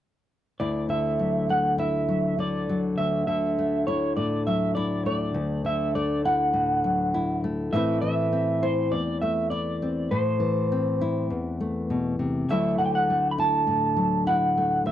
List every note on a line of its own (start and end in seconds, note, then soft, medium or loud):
0.60 2.97 D2 medium
0.60 1.77 E4 soft
0.60 0.90 D5 medium
0.89 2.37 D3 soft
0.89 1.50 E5 medium
1.19 2.07 F#3 soft
1.49 3.57 A3 soft
1.49 1.79 F#5 medium
1.78 2.94 E4 medium
1.78 2.40 E5 medium
2.09 2.68 F#3 soft
2.39 3.26 D3 medium
2.39 2.81 D5 medium
2.69 4.46 F#3 soft
2.98 5.33 D2 medium
2.98 3.26 E5 medium
3.27 5.63 D3 soft
3.27 3.86 E5 medium
3.59 5.06 A3 soft
3.87 4.76 E4 medium
3.87 4.16 C#5 medium
4.17 5.36 A2 soft
4.17 4.46 D5 medium
4.47 6.83 F#3 soft
4.47 4.75 E5 medium
4.75 5.37 E4 medium
4.75 5.05 D5 medium
5.06 5.95 A3 soft
5.06 5.66 D5 medium
5.34 7.73 D2 medium
5.65 7.73 D3 soft
5.65 5.95 E5 medium
5.95 7.44 A3 soft
5.95 6.25 D5 medium
6.25 7.14 E4 medium
6.25 7.40 F#5 medium
6.53 7.72 A2 soft
6.84 7.74 F#3 soft
7.14 7.76 E4 medium
7.44 7.74 A3 soft
7.73 8.92 A2 medium
7.73 8.02 E3 soft
7.73 9.22 A3 soft
7.73 8.32 C4 medium
7.73 8.62 E4 medium
7.73 8.00 E5 medium
8.02 10.39 E3 soft
8.02 8.64 E5 medium
8.32 9.81 C4 soft
8.63 9.51 E4 medium
8.63 8.94 C5 medium
8.91 10.07 E2 soft
8.91 9.21 D5 medium
9.22 11.60 A3 soft
9.22 9.50 E5 medium
9.50 11.01 E4 medium
9.50 10.12 D5 medium
9.82 10.08 C4 soft
10.11 11.30 A2 medium
10.11 11.26 C5 medium
10.40 12.49 E3 soft
10.72 12.46 C4 soft
11.01 12.51 E4 medium
11.30 12.45 E2 medium
11.60 12.50 A3 soft
11.90 12.19 B2 soft
12.19 12.49 C3 soft
12.49 14.84 D2 medium
12.49 12.79 D3 soft
12.49 13.96 F#3 soft
12.49 13.10 A3 soft
12.49 13.38 E4 medium
12.49 12.78 E5 medium
12.79 14.92 D3 soft
12.79 12.85 F#5 medium
12.86 12.93 G5 medium
12.95 13.31 F#5 medium
13.10 14.57 A3 soft
13.31 13.38 B5 medium
13.38 14.26 E4 medium
13.38 14.27 A5 medium
13.67 14.86 A2 medium
13.97 14.92 F#3 soft
14.27 14.89 E4 medium
14.27 14.82 F#5 medium
14.57 14.92 A3 soft
14.86 14.92 D2 medium
14.86 14.92 E5 medium